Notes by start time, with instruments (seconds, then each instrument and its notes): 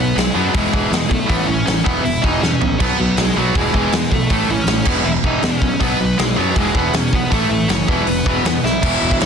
Already playing: picked electric bass B1, distorted electric guitar B2 F#3, lead electric guitar B3 B4
0.16 picked electric bass B1, distorted electric guitar B2 F#3, lead electric guitar G#3 G#4, snare, open hi-hat
0.34 picked electric bass F#2, distorted electric guitar B2 F#3 B3, lead electric guitar F#3 F#4
0.53 picked electric bass E1, distorted electric guitar E2 B2 E3, lead electric guitar G#3 G#4, kick, open hi-hat
0.72 picked electric bass E1, distorted electric guitar E2 B2 E3, lead electric guitar G#3 G#4, kick
0.90 distorted electric guitar E2 B2, picked electric bass E2, snare, open hi-hat
1.09 picked electric bass B1, distorted electric guitar E2 B2, lead electric guitar A3 A4, kick
1.27 picked electric bass A1, distorted electric guitar A2 E3 A3, lead electric guitar B3 B4, kick, open hi-hat
1.46 picked electric bass A1, distorted electric guitar A2 E3, lead electric guitar C#4 C#5
1.66 picked electric bass A1, distorted electric guitar A2 E3, snare, open hi-hat
1.84 picked electric bass E1, distorted electric guitar E2 B2 E3, lead electric guitar B3 B4, kick
2.02 picked electric bass E1, distorted electric guitar E2 B2, lead electric guitar E4 E5, open hi-hat
2.22 picked electric bass E1, distorted electric guitar E2 B2 E3, lead electric guitar D#4 D#5, kick
2.42 distorted electric guitar E2 B2, picked electric bass E2, lead electric guitar C#4 C#5, snare
2.61 picked electric bass A#1, distorted electric guitar E2 B2, floor tom
2.80 picked electric bass B1, distorted electric guitar B2 F#3 B3, lead electric guitar B3 B4, kick, crash
2.99 picked electric bass B1, distorted electric guitar B2 F#3
3.17 picked electric bass B1, distorted electric guitar B2 F#3, lead electric guitar G#3 G#4, snare, open hi-hat
3.36 picked electric bass B1, distorted electric guitar B2 F#3 B3, lead electric guitar F#3 F#4
3.55 picked electric bass E1, distorted electric guitar E2 B2 E3, lead electric guitar G#3 G#4, kick, open hi-hat
3.74 picked electric bass E1, distorted electric guitar E2 B2 E3, lead electric guitar G#3 G#4, kick
3.92 picked electric bass E2, distorted electric guitar E2 B2, snare, open hi-hat
4.12 picked electric bass B1, distorted electric guitar E2 B2, lead electric guitar A3 A4, kick
4.30 picked electric bass A1, distorted electric guitar A2 E3 A3, kick, open hi-hat
4.48 picked electric bass A1, distorted electric guitar A2 E3, lead electric guitar C#4 C#5
4.67 picked electric bass A1, distorted electric guitar A2 E3, snare, open hi-hat
4.85 picked electric bass E1, distorted electric guitar E2 B2 E3, lead electric guitar B3 B4, kick, crash
5.04 picked electric bass E1, distorted electric guitar E2 B2, lead electric guitar E4 E5
5.24 picked electric bass E1, distorted electric guitar E2 B2 E3, lead electric guitar D#4 D#5, kick
5.43 picked electric bass E2, distorted electric guitar E2 B2, lead electric guitar C#4 C#5, snare, open hi-hat
5.61 picked electric bass B1, distorted electric guitar E2 B2, kick
5.80 picked electric bass B1, distorted electric guitar B2 F#3 B3, lead electric guitar B3 B4, kick, open hi-hat
5.98 picked electric bass B1, distorted electric guitar B2 F#3
6.18 picked electric bass B1, distorted electric guitar B2 F#3, lead electric guitar G#3 G#4, snare, open hi-hat
6.36 picked electric bass F#2, distorted electric guitar B2 F#3 B3, lead electric guitar F#3 F#4
6.56 picked electric bass E1, distorted electric guitar E2 B2 E3, lead electric guitar G#3 G#4, kick, open hi-hat
6.75 picked electric bass E1, distorted electric guitar E2 B2 E3, lead electric guitar B3 B4, kick
6.93 distorted electric guitar E2 B2, picked electric bass E2, lead electric guitar C#4 C#5, snare, open hi-hat
7.13 picked electric bass B1, distorted electric guitar E2 B2, lead electric guitar B3 B4, kick
7.30 picked electric bass A1, distorted electric guitar A2 E3 A3, lead electric guitar A3 A4, kick, open hi-hat
7.49 picked electric bass A1, distorted electric guitar A2 E3
7.69 picked electric bass F#1, distorted electric guitar A2 E3, lead electric guitar C#4 C#5, snare, open hi-hat
7.88 picked electric bass E1, distorted electric guitar E2 B2 E3, lead electric guitar B3 B4, kick
8.07 picked electric bass E1, distorted electric guitar E2 B2, open hi-hat
8.26 picked electric bass E1, distorted electric guitar E2 B2 E3, kick
8.45 picked electric bass E2, distorted electric guitar E2 B2, snare, open hi-hat
8.64 picked electric bass B1, distorted electric guitar E2 B2, lead electric guitar E4 E5, snare
8.82 picked electric bass E1, distorted electric guitar E2 B2 E3, kick, crash
9.02 picked electric bass E1
9.11 kick
9.21 picked electric bass E1, lead electric guitar C#4 C#5, snare, crash